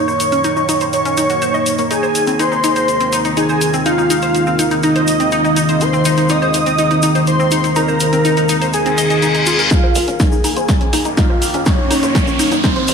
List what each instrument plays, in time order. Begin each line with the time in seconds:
Already playing: synth drone D#3 A#3, analog synth pad F#3 A#3 D#4, analog synth lead C#5, analog polysynth C#6
0.08 synth arpeggio sound C5, shaker
0.20 closed hi-hat, shaker
0.32 synth arpeggio sound C#4, closed hi-hat, shaker
0.44 synth arpeggio sound D#4, closed hi-hat, shaker
0.56 synth arpeggio sound D#4, shaker
0.69 synth arpeggio sound D#4, closed hi-hat, shaker
0.81 synth arpeggio sound C5, closed hi-hat, shaker
0.93 analog synth lead C#5, analog polysynth C#6, closed hi-hat, shaker
1.05 synth arpeggio sound C#4, closed hi-hat, shaker
1.17 synth arpeggio sound D#4, closed hi-hat, shaker
1.30 synth arpeggio sound F#4, closed hi-hat, shaker
1.42 synth arpeggio sound C5, closed hi-hat, shaker
1.54 synth arpeggio sound D#5, shaker
1.66 closed hi-hat, shaker
1.78 synth arpeggio sound A#3, closed hi-hat, shaker
1.91 analog synth pad D#3 C4 G#4 F5, synth arpeggio sound D#4, analog synth lead G#4, analog polysynth G#5, closed hi-hat, shaker
2.03 synth arpeggio sound C5, shaker
2.15 closed hi-hat, shaker
2.27 synth arpeggio sound C4, closed hi-hat, shaker
2.39 synth arpeggio sound D#4, analog synth lead C5, analog polysynth C6, closed hi-hat, shaker
2.52 synth arpeggio sound D#4, shaker
2.64 synth arpeggio sound D#4, closed hi-hat, shaker
2.76 synth arpeggio sound C5, closed hi-hat, shaker
2.88 closed hi-hat, shaker
3.00 synth arpeggio sound C4, closed hi-hat, shaker
3.12 synth arpeggio sound D#4, closed hi-hat, shaker
3.25 synth arpeggio sound D#4, closed hi-hat, shaker
3.37 synth arpeggio sound D#4, analog synth lead G#4, analog polysynth G#5, closed hi-hat, shaker
3.49 synth arpeggio sound C5, shaker
3.61 closed hi-hat, shaker
3.74 synth arpeggio sound C4, closed hi-hat, shaker
3.85 synth arpeggio sound D#4, analog synth lead F4, analog polysynth F5, closed hi-hat, shaker
3.98 synth arpeggio sound D#4, shaker
4.10 synth arpeggio sound D#4, closed hi-hat, shaker
4.22 synth arpeggio sound C5, closed hi-hat, shaker
4.35 closed hi-hat, shaker
4.47 synth arpeggio sound C4, shaker
4.59 synth arpeggio sound D#4, closed hi-hat, shaker
4.71 synth arpeggio sound D#4, closed hi-hat, shaker
4.83 synth arpeggio sound D#4, analog synth lead D#4, analog polysynth D#5, closed hi-hat, shaker
4.96 synth arpeggio sound C5, closed hi-hat, shaker
5.07 closed hi-hat, shaker
5.20 synth arpeggio sound C4, closed hi-hat, shaker
5.31 synth arpeggio sound D#4, closed hi-hat, shaker
5.44 synth arpeggio sound D#4, shaker
5.56 synth arpeggio sound D#4, closed hi-hat, shaker
5.69 synth arpeggio sound C5, closed hi-hat, shaker
5.81 analog synth lead C5, analog polysynth C6, closed hi-hat, shaker
5.93 synth arpeggio sound C4, shaker
6.05 synth arpeggio sound D#4, closed hi-hat, shaker
6.17 synth arpeggio sound D#4, closed hi-hat, shaker
6.29 synth arpeggio sound D#4, analog synth lead D#5, analog polysynth D#6, closed hi-hat, shaker
6.42 synth arpeggio sound C5, shaker
6.54 closed hi-hat, shaker
6.66 synth arpeggio sound C4, closed hi-hat, shaker
6.78 synth arpeggio sound D#4, closed hi-hat, shaker
6.91 synth arpeggio sound D#4, closed hi-hat, shaker
7.02 synth arpeggio sound D#4, closed hi-hat, shaker
7.15 synth arpeggio sound C5, closed hi-hat, shaker
7.27 analog synth lead C5, analog polysynth C6, closed hi-hat, shaker
7.40 synth arpeggio sound C4, shaker
7.51 synth arpeggio sound D#4, closed hi-hat, shaker
7.64 synth arpeggio sound D#4, closed hi-hat, shaker
7.76 synth arpeggio sound D#4, analog synth lead A#4, analog polysynth A#5, closed hi-hat, shaker
7.88 synth arpeggio sound C5, shaker
8.00 closed hi-hat, shaker
8.13 synth arpeggio sound C4, closed hi-hat, shaker
8.25 synth arpeggio sound D#4, closed hi-hat, shaker
8.37 synth arpeggio sound D#4, closed hi-hat, shaker
8.49 synth arpeggio sound D#4, closed hi-hat, shaker
8.61 synth arpeggio sound C5, closed hi-hat, shaker
8.73 analog synth lead G#4, analog polysynth G#5, closed hi-hat, reverse cymbal, shaker
8.86 synth arpeggio sound C4, closed hi-hat, shaker
8.98 synth arpeggio sound D#5, closed hi-hat, shaker
9.10 synth arpeggio sound D#5, closed hi-hat, shaker
9.22 synth arpeggio sound D#4, closed hi-hat, shaker
9.35 synth arpeggio sound D#4, closed hi-hat, shaker
9.46 synth arpeggio sound F4, closed hi-hat, shaker
9.59 synth arpeggio sound A#4, closed hi-hat, shaker
9.71 synth drone D#3 A#3, analog synth pad F#3 D#4 A#4, synth arpeggio sound D#4, analog synth lead F4, analog polysynth F5, kick, snare, closed hi-hat, riser, shaker
9.83 synth arpeggio sound C5
9.95 analog synth bass D#1, open hi-hat, shaker
10.08 analog synth bass D#1, synth arpeggio sound C#4, closed hi-hat, shaker
10.20 synth arpeggio sound D#4, analog synth lead G#4, analog polysynth G#5, kick, snare, closed hi-hat, shaker
10.32 analog synth bass D#1, synth arpeggio sound D#4, shaker
10.44 synth arpeggio sound D#4, open hi-hat, shaker
10.56 analog synth bass D#1, synth arpeggio sound C5, closed hi-hat, shaker
10.69 analog synth bass D#1, kick, snare, closed hi-hat, shaker
10.81 synth arpeggio sound C#4, closed hi-hat
10.93 analog synth bass D#1, synth arpeggio sound D#4, open hi-hat, shaker
11.05 analog synth bass D#2, synth arpeggio sound D#4, closed hi-hat, shaker
11.17 synth arpeggio sound D#4, analog synth lead F4, analog polysynth F5, kick, snare, closed hi-hat, shaker
11.30 analog synth bass D#1, synth arpeggio sound C5
11.42 open hi-hat, shaker
11.54 analog synth bass D#1, synth arpeggio sound C#4, closed hi-hat, shaker
11.66 analog synth lead C#4, synth arpeggio sound D#4, analog polysynth C#5, kick, snare, closed hi-hat, shaker
11.79 synth arpeggio sound D#4
11.91 analog synth bass D#1, synth arpeggio sound D#4, open hi-hat, shaker
12.03 analog synth bass D#1, synth arpeggio sound C5, closed hi-hat, shaker
12.15 kick, snare, closed hi-hat, shaker
12.27 analog synth bass D#1, synth arpeggio sound C#4, shaker
12.39 synth arpeggio sound D#4, open hi-hat, shaker
12.52 analog synth bass D#1, synth arpeggio sound D#4, closed hi-hat, shaker
12.64 analog synth lead C4, synth arpeggio sound D#4, analog polysynth C5, kick, snare, closed hi-hat, shaker
12.76 synth arpeggio sound C5, closed hi-hat
12.88 analog synth bass D#1, open hi-hat, shaker